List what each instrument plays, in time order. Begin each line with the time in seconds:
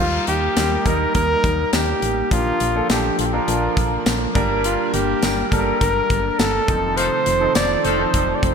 0.00 fm bass D#2, grand piano G3 A#3 D#4 A#4, string machine G3 A#3 D#4, flugelhorn F4
0.27 fm bass D#2, flugelhorn G4, closed hi-hat
0.56 fm bass D#2, grand piano G3 A#3 D#4 A#4, snare, closed hi-hat, tambourine
0.85 fm bass D#2, grand piano G3 A#3 D#4 A#4, flugelhorn A#4, kick, closed hi-hat
1.15 fm bass D#2, flugelhorn A#4, kick, closed hi-hat
1.44 fm bass D#2, kick, closed hi-hat
1.73 fm bass D#2, flugelhorn G4, snare, closed hi-hat, tambourine
2.02 fm bass A1, closed hi-hat
2.31 fm bass A#1, grand piano F3 A#3 D4 A#4, string machine F3 D4, flugelhorn F4, kick, closed hi-hat
2.60 fm bass A#1, closed hi-hat
2.75 grand piano F3 A#3 D4 A4
2.90 fm bass A#1, flugelhorn G4, snare, closed hi-hat, tambourine
3.19 fm bass A#1, flugelhorn F4, closed hi-hat
3.26 flugelhorn G4
3.33 grand piano F3 A#3 D4 A#4, flugelhorn F4
3.48 fm bass A#1, closed hi-hat
3.77 fm bass A#1, kick, closed hi-hat
4.06 fm bass A#1, snare, closed hi-hat, tambourine
4.35 fm bass G1, grand piano G3 A#3 D4 A#4, string machine G3, kick, closed hi-hat
4.64 flugelhorn F4, closed hi-hat
4.94 fm bass G1, flugelhorn G4, closed hi-hat
5.22 fm bass G1, grand piano G3 A#3 D4 A#4, snare, closed hi-hat, tambourine
5.51 fm bass G1, grand piano G3 A#3 D4 A4, flugelhorn A#4, kick, closed hi-hat
5.59 grand piano A#4
5.80 fm bass G1, flugelhorn A#4, kick, closed hi-hat
6.10 fm bass G1, kick, closed hi-hat
6.39 fm bass G1, flugelhorn A4, snare, closed hi-hat, tambourine
6.68 fm bass F1, string machine C3 D#3 F3 A3 D#4, grand piano F3 C4 D#4 A4, kick, closed hi-hat
6.97 horn section F3 A3 D#4 A4, flugelhorn C5, closed hi-hat
7.26 fm bass F1, closed hi-hat
7.40 grand piano F3 C4 D#4 A4
7.55 fm bass F1, flugelhorn D5, snare, closed hi-hat, tambourine
7.84 fm bass F1, horn section F3 A3 D#4 A4, flugelhorn C5, closed hi-hat
7.98 grand piano F3 C4 D#4 A4
8.14 fm bass F1, kick, closed hi-hat
8.35 flugelhorn D5
8.43 fm bass F1, flugelhorn C5, kick, closed hi-hat